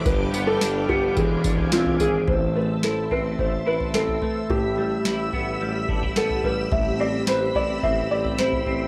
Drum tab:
TB |x-x-x---x-x-x-x-|----------------|----------------|----------------|
SD |----o-------o---|----o-------o---|----o-------o---|----o-------o---|
FT |o-----o----o-oo-|o-----o----o-oo-|o-----o----o-oo-|o-----o----o-oo-|
BD |o-------o-o-----|o-------o-------|----------o-----|o-------o-------|